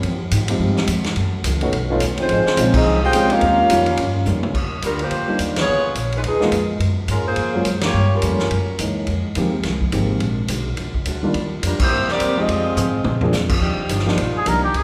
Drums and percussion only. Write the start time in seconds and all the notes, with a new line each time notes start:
0.03 ride
0.31 hi-hat pedal, ride
0.48 ride
0.77 snare
0.87 hi-hat pedal, ride
1.04 snare, ride
1.16 ride
1.44 hi-hat pedal, ride
1.61 ride
1.73 ride
2.00 hi-hat pedal, ride
2.17 ride
2.29 ride
2.46 snare
2.57 hi-hat pedal, ride
2.74 kick, crash
3.13 hi-hat pedal, ride
3.30 ride
3.41 ride
3.70 hi-hat pedal, ride
3.86 ride
3.97 ride
4.26 hi-hat pedal, mid tom
4.43 mid tom
4.54 kick, crash
4.82 hi-hat pedal, ride
4.99 ride
5.11 ride
5.39 hi-hat pedal, ride
5.56 snare, ride
5.95 hi-hat pedal, ride
6.12 ride
6.24 ride
6.41 snare
6.52 hi-hat pedal, ride
6.80 ride
7.08 hi-hat pedal, ride
7.36 ride
7.65 hi-hat pedal, ride
7.81 snare, ride
8.22 hi-hat pedal, ride
8.39 snare
8.51 ride
8.79 hi-hat pedal, ride
9.07 ride
9.35 hi-hat pedal, ride
9.63 snare, ride
9.81 kick
9.92 hi-hat pedal, ride
10.20 ride
10.48 hi-hat pedal, ride
10.77 ride
10.94 kick
11.05 hi-hat pedal, ride
11.34 ride
11.63 hi-hat pedal, ride
11.79 kick, crash
12.08 snare
12.20 hi-hat pedal, ride
12.49 ride
12.77 hi-hat pedal, mid tom
13.04 mid tom
13.21 floor tom
13.32 snare, hi-hat pedal
13.49 kick, crash
13.89 hi-hat pedal, ride
13.99 snare
14.08 snare
14.18 ride
14.46 hi-hat pedal, ride
14.74 ride